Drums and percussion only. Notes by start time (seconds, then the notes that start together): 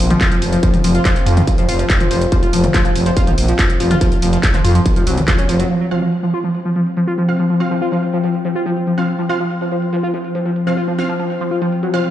0.10 closed hi-hat, mid tom
0.21 kick, clap, closed hi-hat
0.31 closed hi-hat
0.42 open hi-hat
0.53 closed hi-hat
0.63 kick, closed hi-hat
0.74 closed hi-hat, mid tom
0.84 open hi-hat
0.95 closed hi-hat
1.05 kick, clap, closed hi-hat
1.16 clap, closed hi-hat
1.26 open hi-hat
1.37 closed hi-hat, mid tom
1.47 kick, closed hi-hat
1.58 closed hi-hat
1.69 open hi-hat
1.79 closed hi-hat
1.90 kick, clap, closed hi-hat
2.00 closed hi-hat, mid tom
2.11 open hi-hat
2.21 closed hi-hat
2.32 kick, closed hi-hat
2.43 closed hi-hat
2.53 open hi-hat
2.64 closed hi-hat, mid tom
2.74 kick, clap, closed hi-hat
2.85 closed hi-hat
2.96 open hi-hat
3.06 closed hi-hat
3.17 kick, closed hi-hat
3.27 closed hi-hat, mid tom
3.38 open hi-hat
3.48 closed hi-hat
3.59 kick, clap, closed hi-hat
3.70 closed hi-hat
3.80 open hi-hat
3.91 closed hi-hat, mid tom
4.01 kick, closed hi-hat
4.12 closed hi-hat
4.22 open hi-hat
4.33 closed hi-hat
4.43 kick, clap, closed hi-hat
4.54 clap, closed hi-hat, mid tom
4.65 open hi-hat
4.75 closed hi-hat
4.86 kick, closed hi-hat
4.96 closed hi-hat
5.07 open hi-hat
5.17 closed hi-hat, mid tom
5.28 kick, clap, closed hi-hat
5.39 closed hi-hat
5.49 open hi-hat
5.60 closed hi-hat
5.70 closed hi-hat
5.81 closed hi-hat
5.91 closed hi-hat
6.02 closed hi-hat
6.12 closed hi-hat
6.23 closed hi-hat
6.33 closed hi-hat
6.44 closed hi-hat
6.55 closed hi-hat
6.65 closed hi-hat
6.76 closed hi-hat
6.86 closed hi-hat
6.97 closed hi-hat
7.07 closed hi-hat
7.18 closed hi-hat
7.28 closed hi-hat
7.39 closed hi-hat
7.50 closed hi-hat
7.60 closed hi-hat
7.71 closed hi-hat
7.81 closed hi-hat
7.92 closed hi-hat
8.03 closed hi-hat
8.13 closed hi-hat
8.24 closed hi-hat
8.34 closed hi-hat
8.45 closed hi-hat
8.55 closed hi-hat
8.66 closed hi-hat
8.77 closed hi-hat
8.87 closed hi-hat
8.98 closed hi-hat
9.08 closed hi-hat
9.19 closed hi-hat
9.29 closed hi-hat
9.40 closed hi-hat
9.50 closed hi-hat
9.61 closed hi-hat
9.71 closed hi-hat
9.82 closed hi-hat
9.93 closed hi-hat
10.03 closed hi-hat
10.14 closed hi-hat
10.24 closed hi-hat
10.35 closed hi-hat
10.45 closed hi-hat
10.56 closed hi-hat
10.67 closed hi-hat
10.77 closed hi-hat
10.88 closed hi-hat
10.98 closed hi-hat
11.09 closed hi-hat
11.19 closed hi-hat
11.30 closed hi-hat
11.41 closed hi-hat
11.51 closed hi-hat
11.62 closed hi-hat
11.72 closed hi-hat
11.83 closed hi-hat
11.94 closed hi-hat
12.04 closed hi-hat